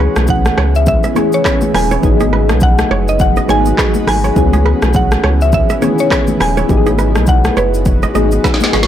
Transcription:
Already playing: C#3 E3 B3 C#4 E4 G#4 C#5 G#5
0.00 B4
0.16 B1, cross-stick, high conga, shaker
0.27 F#5, kick, low conga, shaker
0.45 cross-stick, high conga, shaker
0.58 C#2 C#5, cross-stick
0.75 E5, shaker
0.86 E5, kick, low conga, shaker
1.03 E5, shaker
1.15 E3 B3 C#4 G#4 C#5, high conga, shaker
1.32 C#5, shaker
1.45 B4, kick, cross-stick, clap, shaker
1.61 high conga, shaker
1.74 D#1 B4 G#5, cross-stick, open hi-hat, high conga, low conga
1.91 C#5, shaker
2.02 G#1 F#3 G#3 B3 D#4 F#4 G#4 B4, kick, low conga, shaker
2.20 G#4, high conga, shaker
2.33 B4
2.49 B1, cross-stick, high conga, shaker
2.60 F#5, kick, low conga, shaker
2.78 cross-stick, high conga, shaker
2.91 F#1 C#5
3.08 D#5, shaker
3.19 F#5, kick, low conga, shaker
3.36 D#5, shaker
3.48 G#1 F#3 B3 D#4 G#4 C#5 G#5, high conga, shaker
3.65 shaker
3.78 B4, kick, cross-stick, clap, shaker
3.94 high conga, shaker
4.07 G#1 B4 G#5, cross-stick, open hi-hat, high conga, low conga
4.24 C#5, shaker
4.35 C#2 C#3 E3 B3 C#4 E4 G#4, kick, low conga, shaker
4.53 G#4, high conga, shaker
4.66 B4
4.82 B1, cross-stick, high conga, shaker
4.93 F#5, kick, low conga, shaker
5.11 cross-stick, high conga, shaker
5.24 C#2 C#5, cross-stick
5.41 E5, shaker
5.52 E5, kick, low conga, shaker
5.70 E5, shaker
5.81 D#3 B3 C#4 G#4 C#5, high conga, shaker
5.87 E3
5.98 C#5, shaker
6.11 B4, kick, cross-stick, clap, shaker
6.27 high conga, shaker
6.40 D#1 B4 G#5, cross-stick, open hi-hat, high conga, low conga
6.57 C#5, shaker
6.68 G#1 F#3 G#3 B3 D#4 F#4 G4 B4, kick, low conga, shaker
6.77 G#4
6.86 G#4, high conga, shaker
6.99 B4, shaker
7.15 B1, cross-stick, high conga, shaker
7.27 F#5, kick, low conga, shaker
7.44 cross-stick, high conga, shaker
7.57 F#1 B4 C#5, shaker
7.74 shaker
7.85 kick, low conga, shaker
8.03 D#5, shaker
8.14 G#1 F#3 B3 D#4 G#4 D#5, high conga, shaker
8.32 shaker
8.44 B4, kick, snare, shaker
8.54 snare
8.60 snare, high conga, shaker
8.73 G#1 G#4, snare, high conga, low conga, shaker
8.83 snare

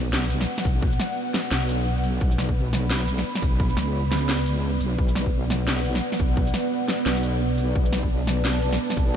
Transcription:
Already playing: B1 B3 B4 D5 F#5
0.13 snare
0.30 closed hi-hat
0.41 snare
0.58 snare, shaker
0.65 B1, kick, closed hi-hat
0.82 kick
0.93 shaker
1.00 snare, closed hi-hat
1.34 snare, closed hi-hat
1.51 B1, snare
1.62 shaker
1.69 closed hi-hat
2.04 closed hi-hat
2.21 B1, kick
2.31 B5, shaker
2.38 snare, closed hi-hat
2.49 kick
2.73 snare, closed hi-hat
2.90 snare
3.08 closed hi-hat
3.18 snare
3.35 snare, shaker
3.42 B1, kick, closed hi-hat
3.60 kick
3.70 shaker
3.77 C#2, snare, closed hi-hat
4.12 snare, closed hi-hat
4.29 snare
4.39 shaker
4.46 closed hi-hat, shaker
4.81 B1, closed hi-hat
4.98 B1, kick
5.08 F#5, shaker
5.15 snare, closed hi-hat
5.26 kick
5.50 snare, closed hi-hat
5.68 snare
5.85 closed hi-hat
5.95 snare
6.12 snare, shaker
6.19 B1, kick, closed hi-hat
6.37 kick
6.47 shaker
6.54 snare, closed hi-hat
6.88 snare, closed hi-hat
7.06 B1, snare
7.16 shaker
7.23 closed hi-hat
7.58 closed hi-hat
7.75 B1, kick
7.86 A5, shaker
7.93 snare, closed hi-hat
8.03 kick
8.27 snare, closed hi-hat
8.45 snare
8.62 closed hi-hat
8.73 snare
8.90 snare, shaker
8.97 B1, kick, closed hi-hat

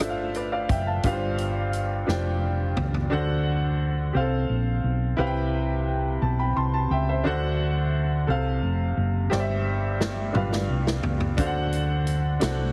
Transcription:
Already playing: A2 C5 E5
0.00 G1 D4 F4 A4 C5 E5, cross-stick, closed hi-hat
0.09 F5
0.34 B4 D5, closed hi-hat
0.52 D5 F5
0.69 F#1 E5 G5, kick, closed hi-hat
0.87 F5 A5
1.03 G1 G2 D4 F4 G4 B4 F5, kick, closed hi-hat
1.12 C5
1.38 closed hi-hat
1.73 closed hi-hat
2.07 F1 D4 F4 G4 C5 G5, snare
2.77 C#2, floor tom
2.94 floor tom
3.10 D2 D3 D4 F#4 A4 C5 F#5
4.13 C2 C4 G4 C5 F5
4.20 A4
4.49 A#1
4.84 B1
5.17 C2 C3 E4 G4 B4 C5 F5
5.27 G5
6.22 B1 A5
6.39 G5 B5
6.57 C2 A5 C6
6.74 A5
6.90 C#2 E5 G5
7.09 C5 E5
7.24 D2 D3 D4 F#4 A4 C5 F#5
8.27 C2 C3 A4 C5 F5
8.63 F1
8.97 F#1
9.30 G1 G2 G4 C5 D5, snare
9.40 E5
10.01 snare
10.33 G1 G2 D4 F4 G4 B4 F5, mid tom
10.53 snare
10.69 C2
10.87 snare
11.03 C#2, floor tom
11.20 floor tom
11.37 D2 D3 D4 F#4 A4 C5 F5, kick, closed hi-hat
11.46 F#5
11.72 closed hi-hat
12.07 closed hi-hat
12.40 C2 D4 F#4 A4 C5 F#5, snare, closed hi-hat

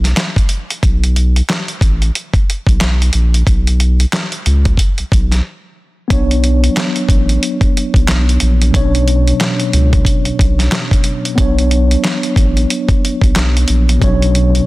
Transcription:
Already playing: B1
0.04 snare, closed hi-hat
0.17 snare, clap, closed hi-hat
0.36 kick, closed hi-hat
0.49 closed hi-hat
0.70 closed hi-hat
0.83 B1, kick, closed hi-hat
1.04 closed hi-hat
1.16 closed hi-hat
1.36 closed hi-hat
1.49 snare, clap, closed hi-hat
1.68 closed hi-hat
1.81 A1, kick, closed hi-hat
2.02 closed hi-hat
2.15 closed hi-hat
2.34 kick, closed hi-hat
2.50 closed hi-hat
2.67 B1, kick, closed hi-hat
2.81 B1, snare, clap, closed hi-hat
3.02 closed hi-hat
3.13 A#1, closed hi-hat
3.34 closed hi-hat
3.47 B1, kick, closed hi-hat
3.67 closed hi-hat
3.80 closed hi-hat
4.00 closed hi-hat
4.13 snare, clap, closed hi-hat
4.32 closed hi-hat
4.46 C#2, closed hi-hat
4.65 kick, closed hi-hat
4.77 kick, closed hi-hat
4.98 B1, closed hi-hat
5.12 B1, kick, closed hi-hat
5.32 snare, closed hi-hat
6.08 B1 F#3 B3 D4, kick, closed hi-hat
6.13 C#5
6.31 closed hi-hat
6.44 closed hi-hat
6.64 closed hi-hat
6.76 snare, clap, closed hi-hat
6.96 closed hi-hat
7.09 A1, kick, closed hi-hat
7.29 closed hi-hat
7.43 closed hi-hat
7.61 kick, closed hi-hat
7.77 closed hi-hat
7.94 B1, kick, closed hi-hat
8.08 B1, snare, clap, closed hi-hat
8.29 closed hi-hat
8.40 A#1, closed hi-hat
8.62 closed hi-hat
8.71 B1 B2 F#3 C#4, kick, closed hi-hat
8.76 C#5
8.81 D4
8.95 closed hi-hat
9.08 closed hi-hat
9.28 closed hi-hat
9.40 snare, clap, closed hi-hat
9.60 closed hi-hat
9.73 C#2, closed hi-hat
9.93 kick, closed hi-hat
10.05 kick, closed hi-hat
10.25 B1, closed hi-hat
10.39 B1, kick, closed hi-hat
10.59 snare, closed hi-hat
10.72 snare, clap, closed hi-hat
10.91 kick, closed hi-hat
11.04 closed hi-hat
11.25 closed hi-hat
11.35 B1 F#3 B3 D4, kick, closed hi-hat
11.41 C#5
11.59 closed hi-hat
11.71 closed hi-hat
11.91 closed hi-hat
12.04 snare, clap, closed hi-hat
12.23 closed hi-hat
12.36 A1, kick, closed hi-hat
12.57 closed hi-hat
12.70 closed hi-hat
12.89 kick, closed hi-hat
13.05 closed hi-hat
13.21 B1, kick, closed hi-hat
13.36 B1, snare, clap, closed hi-hat
13.57 closed hi-hat
13.68 A#1, closed hi-hat
13.89 closed hi-hat
13.99 B1 B2 F#3 C#4, kick, closed hi-hat
14.04 C#5
14.09 D4
14.22 closed hi-hat
14.35 closed hi-hat
14.55 closed hi-hat

